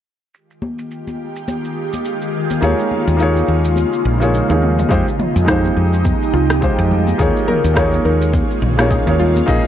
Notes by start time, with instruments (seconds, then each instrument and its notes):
0.34 ambient pad D#3 G#3 F4 G4, shaker
0.51 shaker
0.62 high conga
0.79 shaker
0.91 shaker
1.07 high conga, shaker
1.36 shaker
1.48 high conga, shaker
1.65 shaker
1.93 high conga, shaker
2.05 shaker
2.22 shaker
2.50 high conga, shaker
2.61 fretless electric bass D#2, ambient pad C#3 D#4, grand piano A#3 D#4 F4 G#4 C#5, shaker
2.79 shaker
2.91 high conga
3.07 fretless electric bass D#2, shaker
3.17 grand piano A#3 D#4 F4, shaker
3.21 grand piano G#4 C#5
3.36 high conga, shaker
3.48 fretless electric bass D#2
3.65 shaker
3.76 high conga, shaker
3.93 shaker
4.05 fretless electric bass A#1
4.20 grand piano A#3 D#4 F4 G#4 C#5, high conga, shaker
4.34 shaker
4.48 fretless electric bass D#2, grand piano A#3 D#4 F4 G#4 C#5, high tom, shaker
4.62 mid tom
4.79 mid tom, high conga, shaker
4.89 fretless electric bass F2, ambient pad F3 G#3 D#4 G4, grand piano G#3 D#4 F4 G4 C5, kick, shaker
5.08 shaker
5.20 mid tom, high conga
5.36 fretless electric bass F2, shaker
5.45 grand piano G#3 D#4 F4, synth pluck D#4, kick, cross-stick
5.49 grand piano G4 C5, shaker
5.65 high conga, shaker
5.77 fretless electric bass F2
5.93 shaker
6.04 kick, high conga, shaker
6.22 shaker
6.33 fretless electric bass C2, synth pluck F4
6.50 cross-stick, high conga, shaker
6.61 grand piano G#3 D#4 F4 G4 C5, kick, shaker
6.79 fretless electric bass F2, shaker
6.91 low conga
7.07 high conga, shaker
7.18 fretless electric bass D#2, ambient pad D#3 C#4 F4, grand piano A#3 D#4 F4 G#4 C#5, synth pluck G#4, kick, shaker
7.36 shaker
7.48 synth pluck A#4, mid tom, high conga
7.64 fretless electric bass D#2, shaker
7.74 grand piano A#3 D#4 F4, synth pluck C#5, kick, cross-stick, shaker
7.78 grand piano G#4 C#5
7.93 high conga, shaker
8.05 fretless electric bass D#2, synth pluck A#4
8.22 shaker
8.33 kick, high conga, shaker
8.51 shaker
8.62 fretless electric bass A#1, mid tom
8.77 grand piano A#3 D#4 F4 G#4 C#5, cross-stick, high conga, shaker
8.91 synth pluck G#4, kick, shaker
9.06 fretless electric bass D#2, grand piano A#3 D#4 F4 G#4 C#5, shaker
9.19 synth pluck F4, low conga
9.36 high conga, shaker
9.46 fretless electric bass A#1, grand piano A#3 D#4 F4 G#4 D#5, ambient pad A#3, kick, shaker